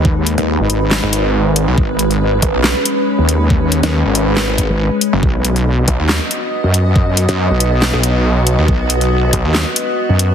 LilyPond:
<<
  \new Staff \with { instrumentName = "Ambient pad" } { \time 4/4 \key gis \minor \tempo 4 = 139 << { <gis b'>1~ | <gis b'>1~ | <gis b'>1 | <b dis''>1~ |
<b dis''>1~ | <b dis''>1 | } \\ { dis'1 | cis'1~ | cis'1 | fis'1~ |
fis'1~ | fis'1 | } >> }
  \new Staff \with { instrumentName = "Detuned saw bass" } { \clef bass \time 4/4 \key gis \minor r8. dis,8 r4 gis,,4. b,,16 | r4. gis,,16 b,,8 r4. r16 | r8. dis,8 gis,,4. r4 fis,,16 | r4. b,,16 dis,8 r4. r16 |
r8. fis,8 r4 b,,4. dis,16 | r4. b,,16 dis,8 r4. r16 | }
  \new Staff \with { instrumentName = "Wobble bass" } { \clef bass \time 4/4 \key gis \minor dis,8. r8 gis,,4 r4. r16 | gis,,4. r4. r16 dis,8.~ | dis,8. r2 gis,,8 r8. | b,,4. r4. r16 fis,8.~ |
fis,8. r8 b,,4 r4. r16 | b,,4. r4. r16 fis,8. | }
  \new DrumStaff \with { instrumentName = "Drums" } \drummode { \time 4/4 bd8 hh16 hh16 r8 hh8 <hc sn>8 hh8 r8 hh8 | bd8 hh16 hh16 r8 <hh bd>8 <hc sn>8 hh8 r8 hh8 | bd8 hh16 <hh sn>16 r8 hh8 <hc sn>8 <hh bd>8 r8 hh8 | bd8 hh16 hh16 r8 <hh bd>8 <hc sn>8 hh8 r8 hh8 |
bd8 hh16 hh16 r8 hh8 <hc sn>8 hh8 r8 hh8 | bd8 hh16 hh16 r8 <hh bd>8 <hc sn>8 hh8 r8 hh8 | }
>>